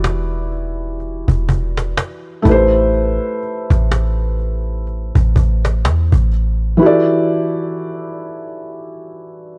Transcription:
Already playing: 808-style bass E1, felt piano E3 E4 F#4 G4 D5
0.04 cajon slap
0.52 cajon slap
1.00 cajon slap
1.28 808-style bass E1, cajon bass
1.49 cajon bass
1.77 cajon slap
1.97 cajon slap
2.42 808-style bass A1, felt piano A3 E4, cajon bass
2.47 felt piano G4 B4
2.51 felt piano C5
2.94 cajon slap
3.43 cajon slap
3.70 808-style bass A1, cajon bass, cajon slap
3.92 cajon slap
4.39 cajon slap
4.87 cajon slap
5.15 808-style bass A1, cajon bass
5.36 808-style bass A1, cajon bass
5.65 cajon slap
5.84 808-style bass E2, cajon slap
6.12 808-style bass A1, cajon bass
6.33 cajon slap
6.77 felt piano E3 E4 F#4
6.83 felt piano G4 A4 D5

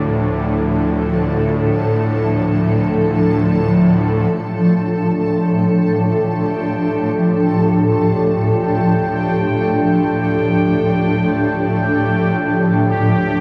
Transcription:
Already playing: synth drone D2 A2, ambient pad A2 F3 D4 A4, synth texture D4 D5
4.31 synth drone D2 A2, synth texture G4 G5

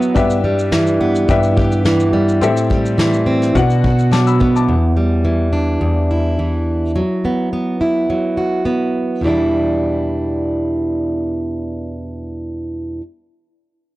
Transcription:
Already playing: upright piano F#3 E4 F#4 B4 E5 F#5 B5, steel-string acoustic guitar F#3 B3 E4 F#4
0.02 shaker
0.14 steel-string acoustic guitar G2, upright piano D4 G4 B4 E5, kick, shaker
0.30 shaker
0.44 steel-string acoustic guitar G3
0.59 shaker
0.72 steel-string acoustic guitar E3, snare, shaker
0.87 shaker
1.01 steel-string acoustic guitar B3
1.15 shaker
1.28 steel-string acoustic guitar G2, upright piano D4 G4 B4 E5, kick, shaker
1.43 shaker
1.57 steel-string acoustic guitar G4, kick
1.72 shaker
1.85 steel-string acoustic guitar E3, snare, shaker
2.00 shaker
2.13 steel-string acoustic guitar G3
2.29 shaker
2.41 steel-string acoustic guitar A2, upright piano C4 G4 A4 E5, shaker
2.57 shaker
2.70 steel-string acoustic guitar G3, kick
2.86 shaker
2.98 steel-string acoustic guitar E3, snare, shaker
3.13 shaker
3.26 steel-string acoustic guitar C4
3.42 snare, shaker
3.55 steel-string acoustic guitar B2, upright piano D4 F#4 B4 F#5, kick, shaker
3.70 shaker
3.84 steel-string acoustic guitar F#4, kick
3.99 shaker
4.11 steel-string acoustic guitar F#3, upright piano A5 D6, snare, shaker
4.27 upright piano B5 E6, shaker
4.40 steel-string acoustic guitar B3, kick
4.56 upright piano A5 D6, shaker
4.69 steel-string acoustic guitar E2
4.97 steel-string acoustic guitar G3
5.25 steel-string acoustic guitar E3
5.53 steel-string acoustic guitar D4
5.81 steel-string acoustic guitar E2
6.11 steel-string acoustic guitar E4
6.39 steel-string acoustic guitar E3
6.96 steel-string acoustic guitar F#3
7.25 steel-string acoustic guitar B3
7.53 steel-string acoustic guitar B3
7.81 steel-string acoustic guitar E4
8.10 steel-string acoustic guitar F#3
8.37 steel-string acoustic guitar F#4
8.65 steel-string acoustic guitar B3
9.21 steel-string acoustic guitar E2 B2 E3
9.26 steel-string acoustic guitar G3 D4 E4

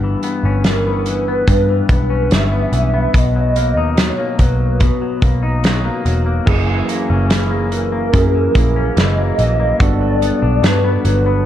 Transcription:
Already playing: picked electric bass G1, clean electric guitar G2 B3
0.04 clean electric guitar E3
0.23 clean electric guitar B3, closed hi-hat
0.43 picked electric bass G1, clean electric guitar C#4
0.64 clean electric guitar E3, soft synth lead A#4, snare, closed hi-hat
0.87 clean electric guitar B3
1.06 clean electric guitar E3, soft synth lead B4, closed hi-hat
1.28 clean electric guitar B3
1.47 picked electric bass G2, clean electric guitar G2, kick, closed hi-hat
1.69 clean electric guitar E3
1.89 picked electric bass B1, clean electric guitar B3, kick, closed hi-hat
2.10 clean electric guitar C#4
2.31 picked electric bass G1, clean electric guitar E3, soft synth lead E5, snare, closed hi-hat
2.52 clean electric guitar B3
2.72 picked electric bass B1, clean electric guitar E3, closed hi-hat
2.94 clean electric guitar B3
3.14 picked electric bass B1, clean electric guitar B2, soft synth lead D#5, kick, closed hi-hat
3.36 clean electric guitar F#3
3.56 clean electric guitar A#3, closed hi-hat
3.77 picked electric bass D#2, clean electric guitar D#4
3.97 clean electric guitar F#3, soft synth lead C#5, snare, closed hi-hat
4.18 clean electric guitar A#3
4.39 picked electric bass B1, clean electric guitar F#3, soft synth lead B4, kick, closed hi-hat
4.80 clean electric guitar B2, kick, closed hi-hat
5.01 clean electric guitar F#3
5.22 picked electric bass B1, clean electric guitar A#3, kick, closed hi-hat
5.43 clean electric guitar D#4
5.64 clean electric guitar F#3, snare, closed hi-hat
5.85 clean electric guitar A#3
6.05 picked electric bass E1, clean electric guitar F#3, closed hi-hat
6.26 clean electric guitar A#3
6.46 picked electric bass F#1, clean electric guitar F#2, synth keys A#3 C#4 E4 G#4, kick, crash
6.68 clean electric guitar E3
6.88 clean electric guitar A#3, closed hi-hat
7.10 picked electric bass F#1, clean electric guitar C#4
7.29 clean electric guitar E3, soft synth lead G#4, snare, closed hi-hat
7.51 clean electric guitar A#3
7.72 clean electric guitar E3, soft synth lead A#4, closed hi-hat
7.92 clean electric guitar A#3
8.13 clean electric guitar F#2, picked electric bass F#2, synth keys A#3 C#4 E4 G#4, kick, closed hi-hat
8.34 clean electric guitar E3
8.55 picked electric bass A#1, synth keys A#3 C#4 E4 G#4, clean electric guitar A#3, kick, closed hi-hat
8.76 clean electric guitar C#4
8.96 picked electric bass F#1, clean electric guitar E3, soft synth lead D#5, snare, closed hi-hat
9.18 clean electric guitar A#3
9.39 picked electric bass A#1, clean electric guitar E3, closed hi-hat
9.60 clean electric guitar A#3
9.79 picked electric bass G1, clean electric guitar G2, synth keys B3 D4 F#4 A4, soft synth lead D5, kick, closed hi-hat
10.01 clean electric guitar F#3
10.22 clean electric guitar B3, closed hi-hat
10.42 picked electric bass B1, clean electric guitar D4
10.63 picked electric bass G2, clean electric guitar F#3, soft synth lead B4, snare, closed hi-hat
10.84 clean electric guitar B3
11.05 picked electric bass G1, clean electric guitar F#3, soft synth lead B4, closed hi-hat
11.26 clean electric guitar B3

